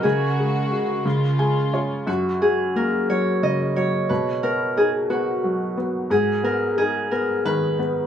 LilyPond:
<<
  \new Staff \with { instrumentName = "Harp" } { \time 6/8 \key fis \major \tempo 4. = 59 gis'2 r4 | fis'8 gis'8 ais'8 cis''8 dis''8 cis''8 | b'8 ais'8 gis'8 fis'4 r8 | gis'8 ais'8 gis'8 ais'8 b'4 | }
  \new Staff \with { instrumentName = "Felt piano" } { \time 6/8 \key fis \major cis8 gis8 fis'8 cis8 <gis gis''>8 <eis' cis''>8 | fis,8 fis8 ais8 fis8 cis8 fis8 | b,8 b8 dis'8 b8 fis8 b8 | gis,8 b8 dis'8 b8 dis8 b8 | }
  \new Staff \with { instrumentName = "String section" } { \clef bass \time 6/8 \key fis \major << { <cis fis'>4. <cis eis'>4. | r2. | r2. | r2. | } \\ { gis2. | r2. | r2. | r2. | } >> }
>>